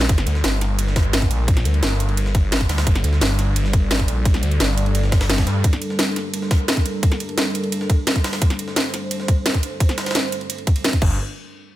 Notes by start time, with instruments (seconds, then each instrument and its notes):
0.01 snare
0.09 detuned saw bass G1, analog synth pad G3 D4 A4 A#4, kick, closed hi-hat, ride
0.18 snare, closed hi-hat, ride
0.27 detuned saw bass D2, closed hi-hat, ride
0.35 snare
0.44 detuned saw bass G1, snare, closed hi-hat, open hi-hat
0.61 snare, closed hi-hat, ride
0.79 closed hi-hat, ride
0.87 snare
0.96 kick, snare, closed hi-hat, open hi-hat
1.13 snare, closed hi-hat, open hi-hat
1.22 kick, closed hi-hat, ride
1.31 detuned saw bass A#1, closed hi-hat, ride
1.48 kick, closed hi-hat, ride
1.57 snare, closed hi-hat
1.65 detuned saw bass D2, closed hi-hat, ride
1.74 ride
1.83 detuned saw bass G1, snare, closed hi-hat, ride
2.00 closed hi-hat, ride
2.09 ride
2.17 closed hi-hat, ride
2.26 snare
2.35 kick, closed hi-hat, ride
2.52 snare, closed hi-hat, ride
2.61 kick, closed hi-hat, ride
2.69 detuned saw bass D2, snare, closed hi-hat, open hi-hat
2.78 snare, open hi-hat
2.87 detuned saw bass G1, analog synth pad D5, kick, closed hi-hat, ride
2.95 snare, closed hi-hat, ride
3.04 detuned saw bass D2, closed hi-hat, ride
3.13 snare
3.21 detuned saw bass G1, snare, closed hi-hat, open hi-hat
3.39 snare, closed hi-hat, ride
3.56 closed hi-hat, ride
3.65 snare
3.73 kick, closed hi-hat, ride
3.91 snare, closed hi-hat, ride
3.99 kick, closed hi-hat, ride
4.08 detuned saw bass A#1, closed hi-hat, ride
4.25 kick, closed hi-hat, ride
4.34 snare, closed hi-hat
4.43 detuned saw bass D2, closed hi-hat, ride
4.51 closed hi-hat, ride
4.60 detuned saw bass G1, snare, closed hi-hat, ride
4.77 closed hi-hat, ride
4.86 ride
4.95 closed hi-hat, ride
5.04 snare
5.12 kick, snare, closed hi-hat, open hi-hat
5.21 snare, open hi-hat
5.30 snare, closed hi-hat, open hi-hat
5.38 kick, snare, closed hi-hat, open hi-hat
5.47 detuned saw bass G2, snare, closed hi-hat, ride
5.64 analog synth pad A#4, kick, closed hi-hat, ride
5.73 snare, closed hi-hat, ride
5.82 closed hi-hat, ride
5.90 snare
5.99 snare, closed hi-hat, open hi-hat
6.16 snare, closed hi-hat, ride
6.34 closed hi-hat, ride
6.42 snare
6.51 kick, snare, closed hi-hat, open hi-hat
6.68 snare, closed hi-hat, open hi-hat
6.77 kick, closed hi-hat, ride
6.86 closed hi-hat, ride
7.03 kick, closed hi-hat, ride
7.12 snare, closed hi-hat
7.20 closed hi-hat, ride
7.29 ride
7.38 snare, closed hi-hat, ride
7.55 closed hi-hat, ride
7.64 ride
7.72 closed hi-hat, ride
7.81 snare
7.90 kick, closed hi-hat, ride
8.07 snare, closed hi-hat, ride
8.16 kick, closed hi-hat, ride
8.24 snare, closed hi-hat, open hi-hat
8.33 snare, open hi-hat
8.42 analog synth pad C5, kick, closed hi-hat, ride
8.50 snare, closed hi-hat, ride
8.59 closed hi-hat, ride
8.68 snare
8.76 snare, closed hi-hat, open hi-hat
8.94 snare, closed hi-hat, ride
9.11 closed hi-hat, ride
9.20 snare
9.28 kick, closed hi-hat, ride
9.46 snare, closed hi-hat, ride
9.54 kick, closed hi-hat, ride
9.63 closed hi-hat, ride
9.80 kick, closed hi-hat, ride
9.89 snare, closed hi-hat
9.98 snare, closed hi-hat, open hi-hat
10.06 snare, closed hi-hat, open hi-hat
10.11 snare, open hi-hat
10.15 snare, closed hi-hat, ride
10.32 closed hi-hat, ride
10.41 ride
10.50 closed hi-hat, ride
10.58 ride
10.67 kick, closed hi-hat, ride
10.76 ride
10.84 snare, closed hi-hat, ride
10.93 kick, closed hi-hat, ride
11.02 detuned saw bass G1, analog synth pad G3 D4 A4 A#4, kick, crash